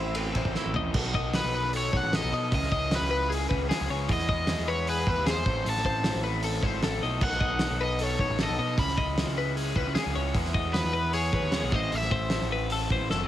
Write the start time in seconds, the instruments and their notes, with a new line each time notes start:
Already playing: picked electric bass A1, overdriven electric guitar A2 E3 A3 C4 E4 E5, clean electric guitar A2 C4 C5
0.00 clean electric guitar E4
0.15 clean electric guitar E3 C4 A4, ride
0.34 picked electric bass A1, overdriven electric guitar A3 C4 E4, clean electric guitar C5, kick, ride
0.45 picked electric bass A1, kick
0.54 overdriven electric guitar E3 A3 C4 E4, clean electric guitar E4 A4, snare
0.66 picked electric bass A1
0.74 picked electric bass A1, clean electric guitar A2 D#5, overdriven electric guitar A3 C4 E4, floor tom
0.92 picked electric bass B1, overdriven electric guitar B2 D#3 F#3 B3 D#4 A4, kick, crash
1.04 snare
1.12 overdriven electric guitar F#3 B3 D#4 A4, clean electric guitar D#5, kick
1.33 overdriven electric guitar B2 D#3 F#3 B3 D#4 A4 B4, snare, open hi-hat
1.44 picked electric bass B1, snare
1.54 clean electric guitar B4
1.73 clean electric guitar A4, open hi-hat
1.77 overdriven electric guitar C#5
1.92 picked electric bass B1, overdriven electric guitar F#3 B3 D#4 A4, clean electric guitar C#5, kick
1.97 overdriven electric guitar F#5
2.03 picked electric bass A1
2.11 overdriven electric guitar F#3 B3 D#4 A4, clean electric guitar A4, snare, open hi-hat
2.15 overdriven electric guitar D#5
2.24 picked electric bass B1
2.31 picked electric bass B2, overdriven electric guitar F#3 B3 D#4 A4, clean electric guitar D#5
2.51 picked electric bass C#2, overdriven electric guitar C#3 G#3 C#4 E4 G#4 D#5, kick, open hi-hat
2.62 snare
2.71 overdriven electric guitar C#4 E4 G#4, clean electric guitar D#5, kick
2.90 overdriven electric guitar C#3 G#3 C#4 E4 G#4, snare, open hi-hat
2.95 overdriven electric guitar B4
3.01 picked electric bass C#2, snare
3.11 clean electric guitar B4
3.30 clean electric guitar G#4, open hi-hat
3.49 picked electric bass C#2, overdriven electric guitar C#4 E4 G#4, clean electric guitar B4, kick
3.61 picked electric bass C#2
3.69 overdriven electric guitar G#3 C#4 E4 G#4, clean electric guitar G#4, snare, open hi-hat
3.81 picked electric bass C#2
3.88 picked electric bass C#2, overdriven electric guitar C#4 E4 G#4, clean electric guitar C#5
4.07 picked electric bass E2, overdriven electric guitar E3 G#3 B3 E4 G#4, kick, open hi-hat
4.13 overdriven electric guitar D#5
4.19 snare
4.28 overdriven electric guitar B3 E4 G#4, clean electric guitar D#5, kick
4.47 overdriven electric guitar E3 G#3 B3 E4 G#4, snare, open hi-hat
4.59 picked electric bass E2, snare
4.68 clean electric guitar B4, overdriven electric guitar C#5
4.87 clean electric guitar G#4, overdriven electric guitar B4, open hi-hat
5.06 picked electric bass E2, overdriven electric guitar B3 E4 G#4, clean electric guitar B4, kick
5.18 picked electric bass D#2
5.25 overdriven electric guitar G#3 B3 E4 G#4, clean electric guitar G#4, snare, open hi-hat
5.30 overdriven electric guitar C5
5.37 picked electric bass E2
5.44 picked electric bass A1, overdriven electric guitar A2 E3 A3 C4 E4 A4, clean electric guitar C5, kick
5.64 picked electric bass A1, overdriven electric guitar A2 E3 A3 C4 E4 A4, open hi-hat
5.69 overdriven electric guitar A5
5.76 snare
5.84 overdriven electric guitar A3 C4 E4 A4, clean electric guitar C5, kick
6.04 overdriven electric guitar A2 E3 A3 C4 E4 A4, snare, open hi-hat
6.14 picked electric bass A1, snare
6.24 clean electric guitar B4
6.43 clean electric guitar A4, open hi-hat
6.63 picked electric bass G#1, overdriven electric guitar A3 C4 E4 A4, clean electric guitar C5, kick
6.83 picked electric bass A1, overdriven electric guitar A3 C4 E4 A4, clean electric guitar A4, snare, open hi-hat
7.01 picked electric bass B1, overdriven electric guitar A3 C4 E4 A4, clean electric guitar D#5
7.21 picked electric bass B1, overdriven electric guitar B2 D#3 F#3 B3 D#4 A4 F#5, kick, crash
7.31 snare
7.40 overdriven electric guitar F#3 B3 D#4 A4, clean electric guitar D#5, kick
7.59 overdriven electric guitar B2 D#3 F#3 B3 D#4 A4, snare, open hi-hat
7.70 picked electric bass B1, snare
7.81 clean electric guitar B4, overdriven electric guitar D#5
7.99 clean electric guitar A4, open hi-hat
8.03 overdriven electric guitar C#5
8.19 picked electric bass B1, overdriven electric guitar F#3 B3 D#4 A4, clean electric guitar C#5, kick
8.30 picked electric bass A1
8.37 overdriven electric guitar F#3 B3 D#4 A4, clean electric guitar A4, snare, open hi-hat
8.43 overdriven electric guitar D#5
8.49 picked electric bass B1
8.57 picked electric bass B2, overdriven electric guitar F#3 B3 D#4 A4, clean electric guitar D#5
8.76 picked electric bass C#2, overdriven electric guitar C#3 G#3 C#4 E4 B5, kick, open hi-hat
8.88 snare
8.96 overdriven electric guitar G#3 C#4 E4, clean electric guitar D#5, kick
9.16 overdriven electric guitar C#3 G#3 C#4 E4, snare, open hi-hat
9.27 picked electric bass C#2, snare
9.38 clean electric guitar B4
9.56 clean electric guitar G#4, open hi-hat
9.75 picked electric bass C#2, overdriven electric guitar G#3 C#4 E4, clean electric guitar B4, kick
9.87 picked electric bass C#2
9.95 overdriven electric guitar C#3 G#3 C#4 E4, clean electric guitar G#4, snare, open hi-hat
10.06 picked electric bass C#2
10.14 picked electric bass C#2, overdriven electric guitar G#3 C#4 E4, clean electric guitar C#5
10.34 picked electric bass E2, overdriven electric guitar E3 G#3 B3 E4, kick, open hi-hat
10.45 snare
10.53 overdriven electric guitar G#3 B3 E4, clean electric guitar D#5, kick
10.73 overdriven electric guitar E3 G#3 B3 E4 B4, snare, open hi-hat
10.84 picked electric bass E2, snare
10.93 clean electric guitar B4
11.13 clean electric guitar G#4, overdriven electric guitar C#5, open hi-hat
11.32 picked electric bass E2, overdriven electric guitar G#3 B3 E4, clean electric guitar B4, kick
11.43 picked electric bass D#2
11.52 overdriven electric guitar E3 G#3 B3 E4, clean electric guitar G#4, snare, open hi-hat
11.63 picked electric bass B1
11.71 picked electric bass A1, overdriven electric guitar A2 E3 A3 C4 E4 D#5, clean electric guitar C5, kick
11.91 picked electric bass A1, overdriven electric guitar A2 E3 A3 C4 E4, open hi-hat
11.95 overdriven electric guitar E5
12.02 snare
12.11 overdriven electric guitar A3 C4 E4, clean electric guitar C5, kick
12.30 overdriven electric guitar A2 E3 A3 C4 E4, snare, open hi-hat
12.41 picked electric bass A1, snare
12.52 clean electric guitar B4
12.70 clean electric guitar A4, open hi-hat
12.90 picked electric bass A1, overdriven electric guitar A3 C4 E4, clean electric guitar C5, kick
13.01 picked electric bass A1
13.10 picked electric bass F#1, overdriven electric guitar E3 A3 C4 E4, clean electric guitar A4, snare